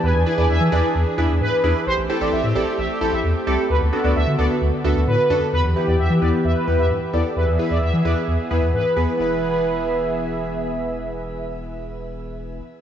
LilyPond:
<<
  \new Staff \with { instrumentName = "Analog polysynth" } { \time 4/4 \key d \mixolydian \tempo 4 = 131 gis''2. r4 | r1 | r1 | r8 g'4. b'4. d''8 |
e''2.~ e''8 r8 | e''1~ | e''1 | }
  \new Staff \with { instrumentName = "Analog polysynth" } { \time 4/4 \key d \mixolydian b'16 r8 d''16 e''8 d''16 r8. e''16 r16 b'8. r16 | c''16 r8 d''16 e''8 d''16 r16 e''16 r8 e''16 r8 d''16 r16 | b'16 r8 d''16 e''8 d''16 r8. e''16 r16 b'8. r16 | b'16 r8 d''16 e''8 d''16 r16 e''16 r8 e''16 r8 d''16 r16 |
b'16 r8 d''16 e''8 d''16 r8. e''16 r16 b'8. r16 | b'2. r4 | r1 | }
  \new Staff \with { instrumentName = "Synth keys" } { \time 4/4 \key d \mixolydian r8 <d' e' gis' b'>16 <d' e' gis' b'>16 r8 <d' e' gis' b'>16 r8. <d' e' gis' b'>16 r8. <d' e' gis' b'>16 r16 | r8 <c' e' g' a'>16 <c' e' g' a'>16 r8 <c' e' g' a'>16 r8. <c' e' g' a'>16 r8. <c' e' g' a'>16 r16 | r8 <b d' fis' a'>16 <b d' fis' a'>16 r8 <b d' fis' a'>16 r8. <b d' fis' a'>16 r8. <b d' fis' a'>16 r16 | r8 <b e' g' b'>16 r8. <b e' g' b'>16 r8. <b e' g' b'>16 r8. <b e' g' a'>16 r16 |
r8 <b e' gis' b'>16 r8. <b e' gis' b'>16 r8. <b e' gis' b'>16 r8. <b e' gis' b'>16 r16 | <b e' gis' b'>1~ | <b e' gis' b'>1 | }
  \new Staff \with { instrumentName = "Analog synth pad" } { \time 4/4 \key d \mixolydian << { <d' gis'>1 | <c' g'>1 | <b fis'>1 | <b g'>1 |
<b gis'>1 | <e b gis'>1~ | <e b gis'>1 | } \\ { e1 | a1 | d1 | e1~ |
e1 | r1 | r1 | } >> }
  \new Staff \with { instrumentName = "Analog synth bass" } { \clef bass \time 4/4 \key d \mixolydian e,16 e,16 r16 e,16 e,16 e16 e,16 r16 e,16 r16 e,16 e,16 gis,16 r16 e,16 r16 | a,,16 a,,16 r16 a,,16 a,,16 a,16 a,,16 r16 a,,16 r16 a,,16 a,,16 e,16 r16 c,16 r16 | d,16 d,16 r16 d,16 d,16 d16 d,16 r16 d,16 r16 d,16 d,16 a,16 r16 fis,16 r16 | e,16 e,16 r16 e,16 e,16 e16 e,16 r16 e,16 r16 e,16 e,16 g,16 r16 e,16 r16 |
e,16 e,16 r16 e,16 e,16 e16 e,16 r16 e,16 r16 e,16 e,16 gis,16 r16 e,16 r16 | e,,1~ | e,,1 | }
>>